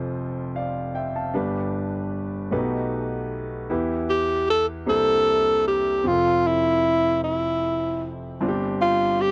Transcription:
Already playing: F1 F2 F4 A4 C5
0.56 D5 F5
0.95 E5 G5
1.16 F5 A5
1.34 G1 G2 D4 G4 B4
2.51 B1 B2 A3 C#4 F#4 G4 B4
2.58 D#4
3.70 E2 E3 E4 G4 B4
4.10 G4
4.50 A4
4.86 C2 C3 A#3 D4 E4 G4 A4 C5
5.67 G4
6.04 F1 F2 F3 C4 F4 G#4
6.12 A4
6.47 E4
7.24 E4
8.41 G1 G2 C4 D4 F4
8.49 G4
8.82 F4
9.21 G4

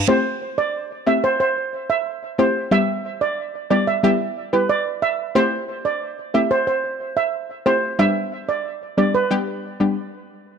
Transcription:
0.08 A3 C4 E4 G4 C5
0.58 D5
1.06 A3 C4 E4 G4 E5
1.24 C5
1.40 C5
1.90 E5
2.38 A3 C4 E4 G4 C5
2.71 G3 B3 E4 G4 E5
3.21 D5
3.70 G3 B3 E4 G4 D5
3.87 E5
4.03 G3 B3 E4 G4 E5
4.53 G3 B3 E4 G4 B4
4.69 D5
5.02 E5
5.35 A3 C4 E4 G4 C5
5.85 D5
6.34 A3 C4 E4 G4 E5
6.51 C5
6.67 C5
7.17 E5
7.66 A3 C4 E4 G4 C5
7.99 G3 B3 D4 G4 E5
8.49 D5
8.97 G3 B3 D4 G4 D5
9.15 B4
9.31 G3 B3 D4 G4
9.80 G3 B3 D4 G4

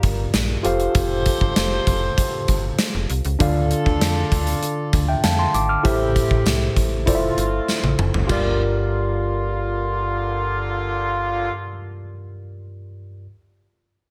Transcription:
Already playing: G2 F4 G4 A#4 D5 F5
0.03 G1, kick, closed hi-hat
0.34 A#1, snare, closed hi-hat, tambourine
0.63 F1 F4 G4 A4 C5 F5, closed hi-hat
0.80 closed hi-hat
0.95 F1, kick, closed hi-hat
1.26 kick, closed hi-hat
1.41 G1, kick
1.56 F1, snare, closed hi-hat, tambourine
1.87 F1, kick, closed hi-hat
2.18 kick, closed hi-hat
2.48 G1, kick, closed hi-hat
2.79 snare, closed hi-hat, tambourine
2.95 F1
3.10 C2, closed hi-hat
3.25 C#2, closed hi-hat
3.39 D2 D3 D4 F4 A4 D5 F5, kick, closed hi-hat
3.71 closed hi-hat
3.86 D2, kick
4.01 F2, snare, closed hi-hat, tambourine
4.32 D2, kick, closed hi-hat
4.47 closed hi-hat
4.63 closed hi-hat
4.93 D2, kick, closed hi-hat
5.08 E5 G5
5.24 F2 F5 A5, snare, closed hi-hat, tambourine
5.39 A5 C6
5.54 G#1 D6, closed hi-hat
5.69 D6 F6
5.83 A1 A2 C4 E4 G4 A4 C5 E5, kick, closed hi-hat
6.16 kick, closed hi-hat
6.31 A1, kick
6.46 C2, snare, closed hi-hat, tambourine
6.76 A1, kick, closed hi-hat
7.06 F1 A3 C4 E4 F4 A4 C5 D5, kick, closed hi-hat
7.15 E5
7.37 G1, closed hi-hat
7.68 snare, tambourine
7.83 A1, high tom
7.98 F1, mid tom
8.14 F#1, floor tom
8.27 G1 G2 D3 A#3 F4 G4 A#4, kick, floor tom, china, tambourine
8.32 D5

